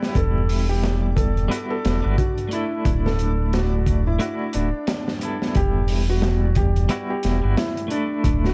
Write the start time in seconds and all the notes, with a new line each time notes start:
Already playing: G3 B3 D4 E4 G4 D5
0.03 snare
0.15 E1 A4, kick, closed hi-hat
0.49 open hi-hat
0.69 G4
0.83 snare, closed hi-hat
1.16 A4, kick, closed hi-hat
1.37 closed hi-hat
1.48 G3 B3 E4 F#4, closed hi-hat
1.70 A4
1.85 E1, snare, closed hi-hat
2.02 G1 G3 B3 E4 F#4
2.18 F#4, kick, closed hi-hat
2.38 closed hi-hat
2.49 A3 D4, closed hi-hat
2.53 E4 A4
2.85 D1, kick, closed hi-hat
3.06 A4, snare
3.19 closed hi-hat
3.53 F#4, snare, closed hi-hat
3.86 kick, closed hi-hat
4.07 E4
4.19 A3 D4 E4 F#4, closed hi-hat
4.53 D1 D4, closed hi-hat
4.87 snare, closed hi-hat
5.08 snare
5.19 G3 B3 E4, closed hi-hat
5.25 A4
5.42 snare
5.55 E1 G4, kick, closed hi-hat
5.88 open hi-hat
6.10 F#4
6.22 snare, closed hi-hat
6.55 G4, kick, closed hi-hat
6.76 closed hi-hat
6.89 G3 B3 E4 F#4, closed hi-hat
7.10 G4
7.23 E1, snare, closed hi-hat
7.42 G1 G3 B3 E4 F#4
7.57 E4, snare, closed hi-hat
7.77 closed hi-hat
7.88 A3 D4 E4, closed hi-hat
7.94 A4
8.24 D1, kick, closed hi-hat
8.44 F#4, snare